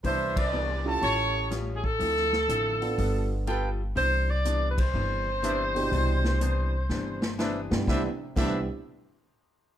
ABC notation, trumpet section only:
X:1
M:4/4
L:1/8
Q:"Swing" 1/4=123
K:C
V:1 name="Trumpet section"
[DBce]3 [A_da]3 z2 | z6 [FABg] z | z6 [DBce] z | z6 [DBce] z |
[DBce] z [DBce] z4 z |]